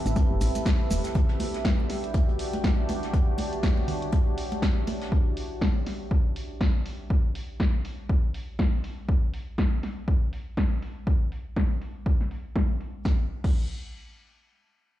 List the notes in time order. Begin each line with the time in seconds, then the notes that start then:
Already playing: C4 G4 A4 B4 E5
0.06 A1, closed hi-hat, maracas
0.16 kick, closed hi-hat, high conga, maracas
0.30 G1
0.41 A1, closed hi-hat, open hi-hat, maracas
0.55 closed hi-hat, high conga, maracas
0.65 kick, snare, closed hi-hat, maracas
0.90 E1 D4 F#4 G4, closed hi-hat, open hi-hat, high conga, maracas
1.04 snare, closed hi-hat, maracas
1.15 kick, closed hi-hat, low conga
1.29 snare
1.40 closed hi-hat, open hi-hat, high conga
1.54 snare, closed hi-hat
1.65 kick, snare, closed hi-hat
1.80 high conga
1.90 snare, closed hi-hat, open hi-hat
2.04 closed hi-hat
2.14 kick, closed hi-hat, high conga
2.29 closed hi-hat
2.39 closed hi-hat, open hi-hat
2.53 closed hi-hat, high conga
2.64 kick, snare, closed hi-hat
2.89 C#5, closed hi-hat, open hi-hat, high conga
3.03 snare, closed hi-hat
3.13 kick, closed hi-hat, low conga
3.38 closed hi-hat, open hi-hat, high conga
3.53 closed hi-hat
3.63 kick, snare, closed hi-hat
3.77 high conga
3.88 closed hi-hat, open hi-hat, low conga
4.02 closed hi-hat
4.12 kick, closed hi-hat, high conga
4.37 closed hi-hat, open hi-hat
4.52 closed hi-hat, high conga
4.62 kick, snare, closed hi-hat
4.87 closed hi-hat, open hi-hat, high conga
5.01 snare, closed hi-hat
5.12 kick
5.37 open hi-hat
5.62 kick, snare
5.86 snare, open hi-hat
6.11 kick
6.36 open hi-hat
6.61 kick, snare
6.86 open hi-hat
7.10 kick
7.35 open hi-hat
7.60 kick, snare
7.85 open hi-hat
8.09 kick
8.34 open hi-hat
8.59 kick, snare
8.84 open hi-hat
9.09 kick
9.34 open hi-hat
9.58 kick, snare
9.83 snare, open hi-hat
10.08 kick
10.33 open hi-hat
10.57 kick, snare
10.82 open hi-hat
11.07 kick
11.32 open hi-hat
11.56 kick, snare
11.81 open hi-hat
12.06 kick
12.21 snare
12.31 open hi-hat
12.56 kick, snare
12.81 open hi-hat
13.05 kick, snare
13.44 kick, crash